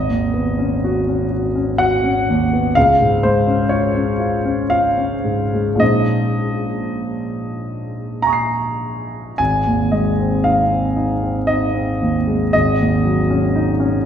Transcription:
grand piano
Already playing: G#1 D#5
0.09 D#2
0.34 B3
0.59 C#4
0.84 F#4
1.08 C#4
1.32 F#4
1.55 C#4
1.78 F#4 F#5
2.04 C#4
2.29 D#2
2.53 B3
2.75 C#2 F5
3.01 G#2
3.23 G#3 C5
3.47 C#4
3.69 F4 C#5
3.94 C#4
4.20 F4
4.45 C#4
4.70 F4 F5
4.98 C#4
5.25 G#2
5.53 G#3
5.75 A#1 G#3 C#4 D#4
5.80 C5 D#5
8.22 G#5 A#5
8.27 C#6 D#6
8.33 C7
9.38 G#1 G#5
9.66 D#2
9.92 G#3 D#5
10.19 C4
10.44 D#4 F5
10.71 C4
10.97 D#4
11.23 C4
11.47 D#4 D#5
11.74 C4
12.01 D#2
12.27 G#3
12.53 G#1 D#5
12.80 D#2
13.05 F#3
13.30 C#4
13.56 D#4
13.80 C#4

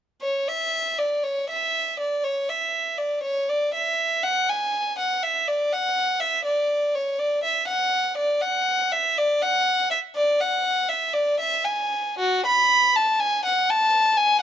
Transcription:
violin
0.22 C#5
0.48 E5
0.98 D5
1.23 C#5
1.50 E5
2.00 D5
2.24 C#5
2.49 E5
2.98 D5
3.24 C#5
3.49 D5
3.74 E5
4.23 F#5
4.49 G#5
4.99 F#5
5.23 E5
5.48 D5
5.73 F#5
6.20 E5
6.45 D5
6.95 C#5
7.19 D5
7.44 E5
7.68 F#5
8.18 D5
8.41 F#5
8.92 E5
9.18 D5
9.42 F#5
9.90 E5
10.15 D5
10.40 F#5
10.89 E5
11.14 D5
11.40 E5
11.64 G#5
12.19 F#4
12.46 B5
12.96 A5
13.20 G#5
13.45 F#5
13.70 A5
14.17 G#5

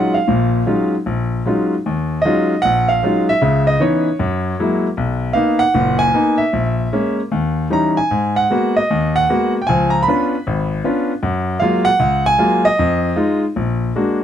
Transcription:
grand piano
Already playing: F#3 G#3 C#4 D#4 F4 F#5
0.14 F5
0.28 A#1 A#2
0.66 F#3 G#3 C#4 D#4 F4
1.06 A#1
1.46 F#3 G#3 C#4 D#4 F4
1.86 D#2
2.22 F#3 G#3 D#5
2.26 C#4 D#4 F4
2.62 A#1 F#5
2.88 F5
3.03 F#3 G#3 C#4 D#4 F4
3.29 E5
3.42 C#2 C#3
3.67 D#5
3.79 E3 B3 C#4 D#4 C#5
4.20 F#2
4.60 F#3 G#3 A#3 E4
4.97 B1
5.33 A#3 B3 D#4 F5
5.59 F#5
5.74 F#1 A#2
5.99 G#5
6.14 A#3 B3 D#4
6.38 E5
6.53 A#1
6.93 G#3 A#3 C#4
7.32 D#2
7.70 E3 G3 C#4 D#4 A#5
7.97 G#5
8.11 G#2
8.36 F#5
8.50 G#3 A#3 B3 F#4
8.76 D#5
8.90 D#2
9.16 F#5
9.29 G#3 A#3 B3 F#4
9.62 G5
9.67 C#2 F3 G#5
9.90 A#5
10.03 B5
10.08 B3 C#4 D4 F4
10.47 G#1
10.84 B3 C#4 D4 F4
11.23 F#2
11.60 F#3 G#3 A#3 F4 F5
11.85 F#5
12.00 C#2
12.26 G#5
12.39 F#3 G#3 A#3 F4
12.65 D#5
12.79 F2
13.16 G#3 D#4 F4
13.56 A#1
13.96 G#3 A#3 D4 F#4

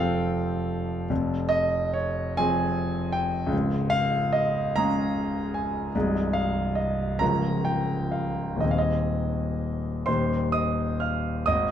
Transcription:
grand piano
Already playing: F1 F2 F3 C4 A4 F5 G5 A5
1.10 F1 F2
1.49 D#5
1.94 C#5
2.37 F3 C4 G#4 G#5
3.12 G5
3.47 C#2
3.52 C#1
3.90 F5
4.33 D#5
4.76 G#3 C#4 G#4 A#5
5.54 G#5
5.95 C1 C2 G#3 D#4 G#4
6.33 F5
6.75 D#5
7.19 C#1 C#2 F3 C#4 A#4 A#5
7.65 G5
8.12 F5
8.56 D#1 D#2
8.60 D#3 C4 G#4 D#5
8.71 F5
8.78 D#5
10.06 D#1 D#2 D#3 A#3 G4 C5 C6
10.52 D#5 D#6
11.00 F5 F6
11.46 G#1 D#5 D#6

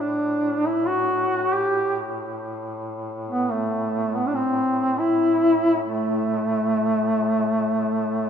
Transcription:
duduk
Already playing: A2
0.01 D4
0.67 E4
0.88 F#4
1.53 G4
3.29 B3
3.52 A3
4.15 B3
4.28 D4
4.36 C4
4.99 E4
5.83 A3

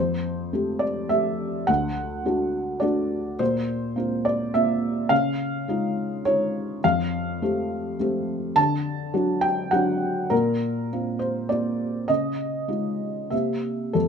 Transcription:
felt piano
Already playing: F2 C5
0.53 A3 C4 G4
0.79 D5
1.09 A3 C4 G4 E5
1.67 D2 F#5
2.25 A3 D4 F#4
2.80 A3 D4 F#4 D5
3.39 A#2 C5
3.96 A#3 C4 F4
4.25 D5
4.54 A#3 C4 F4 E5
5.09 C#3 F5
5.68 G#3 D#4 F4
6.25 G#3 D#4 F4 C#5
6.84 F2 F5
7.42 A3 C4 G4
8.00 A3 C4 G4
8.56 D3 A5
9.14 F#3 D4 F#4
9.41 G5
9.71 F#3 D4 F#4 F#5
10.30 A#2 A#4
10.93 A#3 C4 F4
11.19 C5
11.49 A#3 C4 F4 D5
12.08 C#3 D#5
12.68 G#3 D#4 F4
13.30 C3 A#3 C4 G4 E5
13.93 F2 A4

